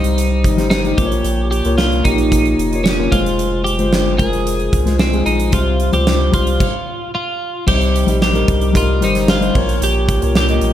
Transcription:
Already playing: sub bass C2, grand piano C3 G3 D#4 C5, clean electric guitar D#4
0.04 closed hi-hat
0.18 closed hi-hat
0.44 sub bass G1, kick, closed hi-hat
0.57 grand piano G3 D#4 C5, snare, closed hi-hat
0.70 clean electric guitar D#4, snare
0.84 grand piano G3 D#4 G4, closed hi-hat
0.97 sub bass A#1, grand piano A#2 A#3 F4 C5, clean electric guitar G4, kick, closed hi-hat
1.06 grand piano C#5
1.12 closed hi-hat
1.24 sub bass A#1, closed hi-hat
1.51 clean electric guitar G4, closed hi-hat
1.65 sub bass C2, grand piano A#3 F4 C#5, closed hi-hat
1.78 clean electric guitar F4, snare
1.92 closed hi-hat
2.04 sub bass A#1, grand piano A#3 F4 G4, clean electric guitar D#4, kick, closed hi-hat
2.18 closed hi-hat
2.32 kick, closed hi-hat
2.45 closed hi-hat
2.59 sub bass F1, closed hi-hat
2.72 grand piano A#3 F4 C#5, closed hi-hat
2.84 clean electric guitar C#4, snare
2.98 grand piano A#3 F4 C#5
3.11 sub bass F1, grand piano G#3 F4 C5, clean electric guitar F4, kick, closed hi-hat
3.26 closed hi-hat
3.39 closed hi-hat
3.64 clean electric guitar G4, closed hi-hat
3.78 sub bass G1, grand piano G#3 F4 C5, closed hi-hat
3.93 snare
4.18 sub bass F1, grand piano G#3 F4 A#4, clean electric guitar G#4, kick, closed hi-hat
4.33 closed hi-hat
4.47 closed hi-hat
4.59 closed hi-hat
4.73 sub bass C2, kick, closed hi-hat
4.85 grand piano G#3 F4 C5, snare, closed hi-hat
4.99 clean electric guitar C4, snare
5.12 grand piano G#3 F4 G#4, closed hi-hat
5.26 sub bass A#1, clean electric guitar D#4, closed hi-hat
5.39 closed hi-hat
5.51 sub bass C2, grand piano C3 G3 F4 C5, clean electric guitar F4, kick, closed hi-hat
5.80 closed hi-hat
5.92 sub bass C#2, grand piano G3 F4 C5, clean electric guitar G4, closed hi-hat
6.07 snare
6.32 sub bass C2, grand piano G3 F4 C5, clean electric guitar F4, kick, closed hi-hat
6.47 closed hi-hat
6.60 kick, crash
7.15 clean electric guitar F4
7.66 sub bass C2, grand piano C3 G3 D#4 C5, clean electric guitar G4, kick, crash
7.81 closed hi-hat
7.96 closed hi-hat
8.07 sub bass A#1, grand piano G3 D#4 G4, closed hi-hat
8.22 clean electric guitar G4, snare
8.33 grand piano G3 D#4 A#4, closed hi-hat
8.48 sub bass C2, kick, closed hi-hat
8.61 closed hi-hat
8.73 grand piano G3 D#4 A#4, clean electric guitar F4, kick, closed hi-hat
9.01 sub bass G1, grand piano G3 D#4 C5, clean electric guitar D#4, closed hi-hat
9.15 snare, closed hi-hat
9.28 clean electric guitar F4, snare
9.41 grand piano G3 D#4 C5, closed hi-hat
9.54 sub bass A#1, grand piano A#2 A#3 F4 C#5, kick, crash
9.69 closed hi-hat
9.82 sub bass A#1, clean electric guitar G4, closed hi-hat
10.09 kick, closed hi-hat
10.21 sub bass C2, grand piano A#3 F4 C#5, closed hi-hat
10.35 clean electric guitar G4, snare
10.48 grand piano A#3 F4 D#5, closed hi-hat
10.61 sub bass A#1, closed hi-hat

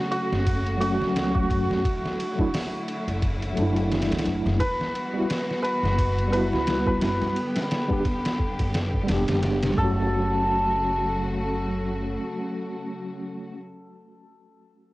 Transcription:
Already playing: string section C#3 F#3 A3 F#4, hammered dulcimer F#4
0.11 hammered dulcimer F#4, ride
0.32 upright bass F#1, snare
0.46 kick, ride
0.66 ride
0.77 tine electric piano F#3 A3, hammered dulcimer F#4
0.81 tine electric piano C#4, ride
0.86 tine electric piano F#4
1.02 upright bass C#2, snare
1.16 snare, ride
1.35 hammered dulcimer F#4, kick
1.50 upright bass F#1, kick, ride
1.70 upright bass F#2, snare
1.84 string section D3 A3 E4, kick, ride
2.05 snare
2.20 ride
2.36 tine electric piano F#3 A3 D4, kick
2.41 tine electric piano E4
2.54 snare, open hi-hat
2.88 ride
3.08 upright bass F#1, ride
3.22 kick, ride
3.42 ride
3.53 tine electric piano F#3 A3
3.57 upright bass F#1, tine electric piano D4, ride
3.62 tine electric piano E4
3.76 ride
3.92 snare, ride
4.02 snare, ride
4.12 upright bass C#2, snare, ride
4.19 snare, ride
4.26 upright bass F#1, ride
4.46 upright bass F#1, snare
4.60 string section E3 G3 B3 F#4, hammered dulcimer B4, kick, ride
4.81 snare
4.95 ride
5.13 tine electric piano G3 B3 E4
5.18 tine electric piano F#4
5.30 snare, ride
5.51 snare
5.62 hammered dulcimer B4, ride
5.83 upright bass F#1, snare
5.98 kick, ride
6.18 ride
6.28 tine electric piano G3 B3
6.32 tine electric piano E4, hammered dulcimer B4, ride
6.37 tine electric piano F#4
6.52 upright bass C#2, snare
6.67 snare, ride
6.87 hammered dulcimer B4, kick
7.01 upright bass F#1, snare, ride
7.22 upright bass F#2, snare
7.35 string section D3 G4, ride
7.56 snare, ride
7.71 snare, ride
7.88 tine electric piano G3 B3 D4, kick
7.93 tine electric piano G4
8.05 kick, ride
8.25 snare, ride
8.39 kick
8.59 upright bass F#1, kick, ride
8.74 snare, ride
8.94 kick
9.03 tine electric piano G3 B3
9.08 upright bass E1, tine electric piano D4, snare, ride
9.13 tine electric piano G4
9.28 upright bass F#1, snare, ride
9.43 snare, ride
9.63 snare, ride
9.71 tine electric piano F#3
9.75 upright bass F#1, string section C#3 F#3 A3 F#4, tine electric piano A3, hammered dulcimer A4, kick
9.80 tine electric piano C#4
9.85 tine electric piano F#4

